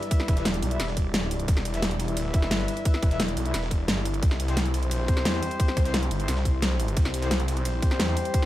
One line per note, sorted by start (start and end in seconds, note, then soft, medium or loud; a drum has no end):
0.00 4.19 G3 medium
0.00 0.35 E4 medium
0.00 8.46 E4 medium
0.00 0.35 B4 medium
0.00 4.19 D5 medium
0.00 0.35 E5 medium
0.00 closed hi-hat soft
0.11 kick loud
0.11 closed hi-hat medium
0.11 ride medium
0.20 snare medium
0.28 0.61 E1 loud
0.28 kick loud
0.28 closed hi-hat medium
0.28 ride medium
0.37 0.46 E4 medium
0.37 0.46 B4 medium
0.37 0.46 E5 medium
0.37 snare soft
0.37 closed hi-hat soft
0.45 snare loud
0.45 closed hi-hat medium
0.45 ride medium
0.54 closed hi-hat soft
0.54 ride soft
0.62 0.78 B1 loud
0.62 closed hi-hat medium
0.62 ride medium
0.71 0.86 E4 medium
0.71 0.86 B4 medium
0.71 0.86 E5 medium
0.71 closed hi-hat soft
0.80 1.47 E1 loud
0.80 snare medium
0.80 closed hi-hat loud
0.80 ride medium
0.88 snare soft
0.97 kick medium
0.97 closed hi-hat medium
0.97 ride medium
1.14 snare loud
1.14 closed hi-hat medium
1.14 ride medium
1.23 snare soft
1.31 closed hi-hat medium
1.31 ride medium
1.40 closed hi-hat soft
1.48 2.08 E1 loud
1.48 kick loud
1.48 closed hi-hat medium
1.48 ride medium
1.57 snare medium
1.57 snare soft
1.65 closed hi-hat medium
1.65 ride medium
1.74 1.83 E4 medium
1.74 1.83 B4 medium
1.74 1.83 E5 medium
1.74 snare medium
1.74 closed hi-hat soft
1.82 snare loud
1.82 closed hi-hat medium
1.82 ride medium
1.91 closed hi-hat soft
1.91 ride soft
2.00 snare soft
2.00 closed hi-hat medium
2.00 ride medium
2.08 2.33 D#1 loud
2.08 3.09 E4 medium
2.08 3.09 B4 medium
2.08 3.09 E5 medium
2.08 closed hi-hat soft
2.17 closed hi-hat medium
2.17 ride medium
2.34 2.50 E1 loud
2.34 kick loud
2.34 closed hi-hat medium
2.34 ride medium
2.42 snare medium
2.42 snare soft
2.51 2.67 G1 loud
2.51 snare loud
2.51 closed hi-hat medium
2.51 ride medium
2.60 snare medium
2.68 closed hi-hat medium
2.68 ride medium
2.77 closed hi-hat soft
2.85 kick loud
2.85 closed hi-hat medium
2.85 ride medium
2.94 snare soft
3.03 3.35 E1 loud
3.03 kick loud
3.03 closed hi-hat medium
3.03 ride medium
3.11 3.20 E4 medium
3.11 3.20 B4 medium
3.11 3.20 E5 medium
3.11 snare soft
3.11 closed hi-hat soft
3.20 snare loud
3.20 closed hi-hat medium
3.20 ride medium
3.28 closed hi-hat soft
3.28 ride soft
3.37 3.53 B1 loud
3.37 closed hi-hat medium
3.37 ride medium
3.45 3.60 E4 medium
3.45 3.60 B4 medium
3.45 3.60 E5 medium
3.45 closed hi-hat soft
3.54 3.70 E1 loud
3.54 snare medium
3.54 closed hi-hat medium
3.54 ride medium
3.63 snare soft
3.71 3.87 E1 medium
3.71 kick medium
3.71 closed hi-hat medium
3.71 ride medium
3.88 4.21 G1 loud
3.88 snare loud
3.88 closed hi-hat medium
3.88 ride medium
3.97 snare soft
4.05 closed hi-hat medium
4.05 ride medium
4.14 closed hi-hat soft
4.23 4.83 C2 loud
4.23 8.46 G3 medium
4.23 8.46 C5 medium
4.23 kick loud
4.23 closed hi-hat medium
4.23 ride medium
4.31 snare medium
4.31 snare soft
4.40 closed hi-hat medium
4.40 ride medium
4.48 4.58 C4 medium
4.48 4.58 G4 medium
4.48 4.58 C5 medium
4.48 snare medium
4.48 closed hi-hat soft
4.57 snare loud
4.57 closed hi-hat medium
4.57 ride medium
4.65 closed hi-hat soft
4.65 ride soft
4.74 snare soft
4.74 closed hi-hat medium
4.74 ride medium
4.82 5.07 B1 loud
4.82 5.83 C4 medium
4.82 5.83 G4 medium
4.82 5.83 C5 medium
4.82 closed hi-hat soft
4.91 closed hi-hat medium
4.91 ride medium
5.08 5.24 C2 loud
5.08 kick loud
5.08 closed hi-hat medium
5.08 ride medium
5.17 snare medium
5.17 snare soft
5.25 5.41 E2 loud
5.25 snare loud
5.25 closed hi-hat medium
5.25 ride medium
5.34 snare medium
5.43 closed hi-hat medium
5.43 ride medium
5.51 closed hi-hat soft
5.60 kick loud
5.60 closed hi-hat medium
5.60 ride medium
5.68 snare soft
5.77 6.10 C2 loud
5.77 kick loud
5.77 closed hi-hat medium
5.77 ride medium
5.85 5.95 C4 medium
5.85 5.95 G4 medium
5.85 5.95 C5 medium
5.85 snare soft
5.85 closed hi-hat soft
5.94 snare loud
5.94 closed hi-hat medium
5.94 ride medium
6.02 closed hi-hat soft
6.02 ride soft
6.11 6.27 G1 loud
6.11 closed hi-hat medium
6.11 ride medium
6.20 6.35 C4 medium
6.20 6.35 G4 medium
6.20 6.35 C5 medium
6.20 closed hi-hat soft
6.28 6.95 C2 loud
6.28 snare medium
6.28 closed hi-hat loud
6.28 ride medium
6.37 snare soft
6.45 kick medium
6.45 closed hi-hat medium
6.45 ride medium
6.62 snare loud
6.62 closed hi-hat loud
6.62 ride medium
6.71 snare soft
6.80 closed hi-hat medium
6.80 ride medium
6.88 closed hi-hat soft
6.97 7.57 C2 loud
6.97 kick loud
6.97 closed hi-hat medium
6.97 ride medium
7.05 snare medium
7.05 snare soft
7.14 closed hi-hat medium
7.14 ride medium
7.22 7.32 C4 medium
7.22 7.32 G4 medium
7.22 7.32 C5 medium
7.22 snare medium
7.22 closed hi-hat soft
7.31 snare loud
7.31 closed hi-hat loud
7.31 ride medium
7.40 closed hi-hat soft
7.40 ride soft
7.48 snare soft
7.48 closed hi-hat medium
7.48 ride medium
7.57 7.81 B1 loud
7.57 8.46 C4 medium
7.57 8.46 G4 medium
7.57 8.46 C5 medium
7.57 closed hi-hat soft
7.65 closed hi-hat loud
7.65 ride medium
7.82 7.98 C2 loud
7.82 kick loud
7.82 closed hi-hat medium
7.82 ride medium
7.91 snare medium
7.91 snare soft
8.00 8.15 E2 loud
8.00 snare loud
8.00 closed hi-hat loud
8.00 ride medium
8.08 snare medium
8.17 closed hi-hat medium
8.17 ride medium
8.25 closed hi-hat soft
8.34 kick loud
8.34 closed hi-hat loud
8.34 ride medium